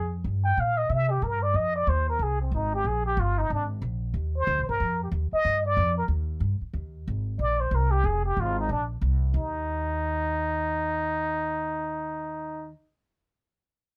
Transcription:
Already playing: upright bass F2, muted trumpet G#4
0.24 upright bass G2
0.45 muted trumpet G5
0.57 upright bass A#2, muted trumpet F5
0.78 muted trumpet D#5
0.89 upright bass C3, muted trumpet E5
1.10 muted trumpet G4
1.22 upright bass G2, muted trumpet A#4
1.43 muted trumpet D5
1.54 upright bass F2, muted trumpet D#5
1.76 muted trumpet D5
1.87 upright bass D#2, muted trumpet C5
2.09 muted trumpet A#4
2.19 upright bass C2, muted trumpet G#4
2.41 muted trumpet C4
2.52 upright bass G#1, muted trumpet D#4
2.75 muted trumpet G4
2.84 upright bass A#1, muted trumpet G#4
3.06 muted trumpet G4
3.17 upright bass G1, muted trumpet F4
3.38 muted trumpet D#4
3.50 upright bass G#1, muted trumpet D4
3.82 upright bass A#1
4.14 upright bass D#2
4.37 muted trumpet C5
4.47 upright bass D2
4.58 upright bass A#1
4.69 upright bass G1, muted trumpet A#4
4.80 upright bass F2
5.03 muted trumpet G4
5.11 upright bass D#2
5.32 muted trumpet D#5, muted upright bass stroke
5.45 upright bass G2
5.66 muted trumpet D5
5.77 upright bass F2
5.98 muted trumpet A#4
6.08 upright bass D#2
6.40 upright bass G2
6.61 muted upright bass stroke
6.73 upright bass D#2
7.08 upright bass G#1
7.39 upright bass A#1, muted trumpet D5
7.60 muted trumpet C5
7.71 upright bass C2, muted trumpet A#4
7.91 muted trumpet G4
8.04 upright bass F1, muted trumpet G#4
8.26 muted trumpet G4
8.37 upright bass G#1, muted trumpet F4
8.60 muted trumpet D#4
8.69 upright bass A#1, muted trumpet D4
9.01 upright bass C2
9.34 upright bass D#2, muted trumpet D#4

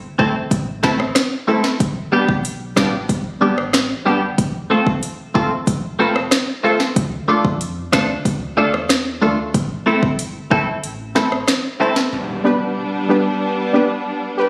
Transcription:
0.18 sub bass G1, synth stab A3 C4 E4 A4, clean electric guitar A3 C4 E4 A4, kick
0.51 sub bass A1, kick, closed hi-hat
0.83 synth stab A3 C4 E4 C5, clean electric guitar A3 C4 E4 A4, kick, snare
1.00 sub bass A1, cross-stick
1.15 cross-stick, snare, closed hi-hat
1.47 synth stab A3 C4 E4 A4, clean electric guitar A3 C4 E4 A4
1.64 snare
1.80 sub bass G1, kick, closed hi-hat
2.12 synth stab G3 B3 D4 G4, clean electric guitar G3 B3 D4 G4
2.29 sub bass B1, kick
2.45 closed hi-hat
2.76 sub bass A1, synth stab G3 B3 D4 F4, clean electric guitar G3 B3 D4 G4, kick, cross-stick, snare
3.09 sub bass G1, kick, closed hi-hat
3.41 synth stab G3 B3 D4 G4, clean electric guitar G3 B3 D4 G4
3.57 sub bass A1, muted clean electric guitar stroke, cross-stick
3.73 cross-stick, snare, closed hi-hat
4.05 sub bass G1, synth stab G3 B3 D4 G4, clean electric guitar G3 B3 D4 G4
4.38 sub bass F1, kick, closed hi-hat
4.70 synth stab A3 C4 F4 A4, clean electric guitar A3 C4 F4 A4
4.87 sub bass E1, kick
5.03 closed hi-hat
5.34 sub bass E1, synth stab A3 C4 F4 A4, clean electric guitar A3 C4 F4 A4, kick
5.67 sub bass F1, kick, closed hi-hat
5.99 synth stab A3 C4 F4 B4, clean electric guitar A3 C4 F4 A4
6.16 sub bass F1, cross-stick
6.31 cross-stick, snare, closed hi-hat
6.63 synth stab A3 C4 F4 A4, clean electric guitar A3 C4 F4 A4
6.80 snare
6.96 sub bass D2, kick, closed hi-hat
7.28 synth stab A3 D4 F4 A4, clean electric guitar A3 D4 F4 A4
7.45 sub bass F2, kick
7.61 closed hi-hat
7.92 sub bass D2, synth stab A3 D4 F4 C5, clean electric guitar A3 D4 F4 A4, kick, cross-stick, snare
8.25 sub bass D2, kick, closed hi-hat
8.57 synth stab A3 D4 F4 A4, clean electric guitar A3 D4 F4 A4
8.73 sub bass E2, muted clean electric guitar stroke, cross-stick
8.89 cross-stick, snare, closed hi-hat
9.21 sub bass D2, synth stab A3 D4 F4 A4, clean electric guitar A3 D4 F4 A4
9.54 sub bass A1, kick, closed hi-hat
9.86 synth stab A3 C4 E4 A4, clean electric guitar A3 C4 E4 A4
10.03 sub bass G1, kick
10.19 closed hi-hat
10.50 sub bass G1, synth stab A3 C4 E4 A4, clean electric guitar A3 C4 E4 A4, kick
10.83 sub bass A1, closed hi-hat
11.15 synth stab A3 C4 E4 A4, clean electric guitar A3 C4 E4 A4, snare
11.32 sub bass A1, cross-stick
11.48 cross-stick, snare, closed hi-hat
11.79 synth stab A3 C4 E4 C5, clean electric guitar A3 C4 E4 A4
11.96 snare
12.12 string section G3 B3 D4, impact
12.44 synth stab G3 B3 D4 G4 B4
13.09 synth stab G3 B3 D4 G4 B4
13.73 synth stab G3 B3 D4 G4 B4
14.37 synth stab G4 B4

